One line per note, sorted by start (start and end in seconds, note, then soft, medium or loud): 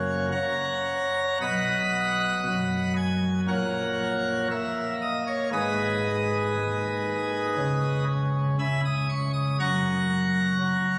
0.00 0.28 F#1 medium
0.00 0.28 F#2 medium
0.00 0.28 A#3 soft
0.00 0.28 C#4 soft
0.00 0.28 F#4 soft
0.00 0.28 C#5 medium
0.32 1.38 C#5 medium
0.32 1.38 F#5 medium
0.32 1.38 A#5 medium
1.41 2.43 B1 medium
1.41 2.43 B2 medium
1.41 2.93 D#5 medium
1.41 2.93 F#5 medium
1.41 2.93 B5 loud
2.47 3.46 F#2 medium
2.97 3.40 G#5 loud
3.48 4.47 A#1 medium
3.48 4.47 A#2 medium
3.48 4.47 A#4 medium
3.48 4.47 C#5 medium
3.48 4.47 F#5 loud
4.51 5.50 A#3 medium
4.51 4.94 E5 loud
5.02 5.23 D#5 medium
5.27 5.49 C#5 loud
5.53 6.53 G#1 medium
5.53 6.53 G#2 medium
5.53 8.04 G#4 medium
5.53 8.04 B4 medium
5.53 8.04 D#5 loud
6.56 7.55 D#2 medium
7.58 8.56 C#2 medium
7.58 8.56 C#3 medium
8.58 9.57 C#2 medium
8.58 8.81 E5 medium
8.58 8.80 G#5 medium
8.58 8.80 B5 loud
8.85 9.06 D#6 loud
9.09 9.31 C#6 loud
9.33 9.55 D#6 loud
9.60 10.57 F#1 medium
9.60 10.57 F#2 medium
9.60 10.99 F#5 loud
9.60 10.99 A#5 medium
9.60 10.99 C#6 loud
10.61 10.99 F#3 medium